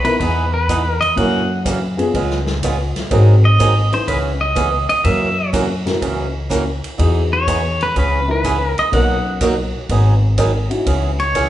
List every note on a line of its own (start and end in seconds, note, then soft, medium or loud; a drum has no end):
0.04 0.18 B3 medium
0.04 0.18 D#4 medium
0.04 0.18 E4 medium
0.04 0.19 A#4 medium
0.04 0.19 B4 medium
0.04 ride soft
0.20 0.98 E2 medium
0.20 0.44 E3 medium
0.20 0.44 B3 soft
0.20 0.44 D#4 medium
0.20 0.44 G#4 medium
0.20 0.53 B4 medium
0.20 kick soft
0.20 ride soft
0.54 0.91 B4 medium
0.69 0.81 E3 medium
0.69 0.81 B3 medium
0.69 0.81 D#4 medium
0.69 0.81 G#4 medium
0.69 kick soft
0.69 hi-hat pedal medium
0.69 ride medium
0.91 1.03 A#4 medium
1.01 1.17 D#5 medium
1.01 ride soft
1.16 1.95 F#2 medium
1.16 1.40 C#3 soft
1.16 1.40 E3 soft
1.16 1.46 A#3 medium
1.16 1.41 A#3 medium
1.16 1.46 C#4 soft
1.16 1.41 C#4 medium
1.16 1.46 E4 soft
1.16 1.46 F#4 medium
1.16 1.41 F#4 medium
1.16 1.62 F#5 medium
1.16 kick soft
1.16 ride medium
1.65 1.78 C#3 medium
1.65 1.78 E3 medium
1.65 1.78 A#3 medium
1.65 1.78 C#4 medium
1.65 1.78 F#4 medium
1.65 kick soft
1.65 hi-hat pedal medium
1.65 ride medium
1.97 2.12 B3 medium
1.97 2.12 C#4 medium
1.97 2.12 F4 medium
1.97 2.12 G#4 medium
1.97 ride soft
2.14 2.92 C#2 medium
2.14 2.38 C#3 medium
2.14 2.38 G#3 medium
2.14 2.38 B3 medium
2.14 2.38 F4 medium
2.14 2.38 G#4 medium
2.14 kick soft
2.14 ride soft
2.30 snare soft
2.47 snare soft
2.63 2.75 C#3 medium
2.63 2.76 G#3 medium
2.63 2.75 B3 medium
2.63 2.76 F4 medium
2.63 2.76 G#4 medium
2.63 kick soft
2.63 hi-hat pedal medium
2.63 ride medium
2.96 snare soft
2.96 ride soft
3.10 3.88 G#1 medium
3.10 3.34 D#3 medium
3.10 3.34 F#3 medium
3.10 3.40 C4 medium
3.10 3.34 C4 medium
3.10 3.40 D#4 medium
3.10 3.35 D#4 medium
3.10 3.41 F#4 medium
3.10 3.41 G#4 medium
3.10 3.35 G#4 medium
3.10 kick soft
3.10 ride medium
3.45 3.94 D#5 medium
3.59 3.71 D#3 medium
3.59 3.72 F#3 medium
3.59 3.72 C4 medium
3.59 3.72 D#4 medium
3.59 3.72 G#4 medium
3.59 kick soft
3.59 hi-hat pedal medium
3.59 ride medium
3.92 4.06 C#4 medium
3.92 4.06 D#4 medium
3.92 4.06 E4 medium
3.92 4.06 B4 medium
3.92 4.09 C5 medium
3.92 ride soft
4.08 4.85 C#2 medium
4.08 4.31 C#3 medium
4.08 4.31 E3 medium
4.08 4.31 B3 medium
4.08 4.31 C#4 medium
4.08 4.32 G#4 medium
4.08 4.17 B4 medium
4.08 kick soft
4.08 ride medium
4.41 4.88 D#5 medium
4.55 4.68 C#3 medium
4.55 4.68 E3 medium
4.55 4.69 B3 medium
4.55 4.69 C#4 medium
4.55 4.69 G#4 medium
4.55 kick soft
4.55 hi-hat pedal medium
4.55 ride medium
4.89 5.05 D#5 loud
4.89 ride soft
5.04 5.82 F#2 medium
5.04 5.28 C#3 soft
5.04 5.28 E3 medium
5.04 5.28 A#3 medium
5.04 5.28 C#4 medium
5.04 5.28 F#4 medium
5.04 5.50 E5 medium
5.04 kick soft
5.04 ride medium
5.53 5.65 C#3 medium
5.53 5.65 E3 medium
5.53 5.66 A#3 medium
5.53 5.66 C#4 medium
5.53 5.66 F#4 medium
5.53 kick soft
5.53 hi-hat pedal medium
5.53 ride medium
5.86 6.00 C#4 medium
5.86 6.00 E4 medium
5.86 6.00 F#4 medium
5.86 6.00 A#4 medium
5.86 snare soft
5.86 ride soft
6.01 6.80 C#2 medium
6.01 6.25 C#3 medium
6.01 6.25 E3 medium
6.01 6.25 A#3 soft
6.01 6.25 C#4 medium
6.01 6.25 F#4 medium
6.01 kick soft
6.01 ride medium
6.50 6.62 C#3 medium
6.50 6.62 E3 medium
6.50 6.62 A#3 medium
6.50 6.63 C#4 medium
6.50 6.63 F#4 medium
6.50 kick soft
6.50 hi-hat pedal medium
6.50 ride medium
6.84 ride soft
6.98 7.76 E2 medium
6.98 7.22 E3 soft
6.98 7.22 B3 soft
6.98 7.73 D#4 medium
6.98 7.22 D#4 medium
6.98 7.74 E4 medium
6.98 7.74 F#4 soft
6.98 7.22 G#4 medium
6.98 7.74 G#4 medium
6.98 kick soft
6.98 ride medium
7.33 7.82 C#5 medium
7.47 7.59 E3 medium
7.47 7.60 B3 medium
7.47 7.60 D#4 medium
7.47 7.60 G#4 medium
7.47 kick soft
7.47 hi-hat pedal medium
7.47 ride medium
7.81 7.97 B4 medium
7.81 ride soft
7.96 8.73 C#2 medium
7.96 8.19 C#3 medium
7.96 8.19 E3 medium
7.96 8.19 B3 soft
7.96 8.19 C#4 medium
7.96 8.20 G#4 medium
7.96 8.30 B4 medium
7.96 kick soft
7.96 ride soft
8.28 8.42 C#4 medium
8.28 8.42 D#4 medium
8.28 8.42 E4 medium
8.28 8.42 A#4 medium
8.28 8.67 B4 medium
8.44 8.56 C#3 medium
8.44 8.56 E3 medium
8.44 8.57 B3 medium
8.44 8.57 C#4 medium
8.44 8.57 G#4 medium
8.44 kick soft
8.44 hi-hat pedal medium
8.44 ride medium
8.67 8.80 A#4 medium
8.78 8.94 D#5 medium
8.78 ride soft
8.92 9.70 B1 medium
8.92 9.16 B2 medium
8.92 9.16 F#3 medium
8.92 9.16 A#3 medium
8.92 9.22 B3 medium
8.92 9.22 C#4 medium
8.92 9.22 D#4 medium
8.92 9.16 D#4 medium
8.92 9.16 F#4 medium
8.92 9.22 A#4 medium
8.92 9.38 F#5 loud
8.92 kick soft
8.92 ride soft
9.41 9.53 B2 medium
9.41 9.53 F#3 medium
9.41 9.54 A#3 medium
9.41 9.54 D#4 medium
9.41 9.54 F#4 medium
9.41 kick soft
9.41 hi-hat pedal medium
9.41 ride medium
9.89 10.67 G#1 medium
9.89 10.13 D#3 medium
9.89 10.13 F#3 soft
9.89 10.13 B3 medium
9.89 10.13 D#4 medium
9.89 10.14 G#4 medium
9.89 kick soft
9.89 ride soft
10.38 10.50 D#3 medium
10.38 10.50 F#3 medium
10.38 10.50 B3 medium
10.38 10.51 D#4 medium
10.38 10.51 G#4 medium
10.38 kick soft
10.38 hi-hat pedal medium
10.38 ride medium
10.69 10.84 C#4 medium
10.69 10.84 D#4 medium
10.69 10.84 E4 medium
10.69 10.85 F#4 medium
10.69 ride soft
10.86 11.49 C#2 medium
10.86 11.10 C#3 medium
10.86 11.10 E3 medium
10.86 11.10 B3 medium
10.86 11.10 C#4 medium
10.86 11.10 G#4 medium
10.86 kick soft
10.86 ride medium
11.20 11.49 C#5 loud
11.20 ride soft
11.35 11.47 C#3 medium
11.35 11.47 E3 medium
11.35 11.48 B3 medium
11.35 11.48 C#4 medium
11.35 11.48 G#4 medium
11.35 kick soft
11.35 hi-hat pedal medium
11.35 ride medium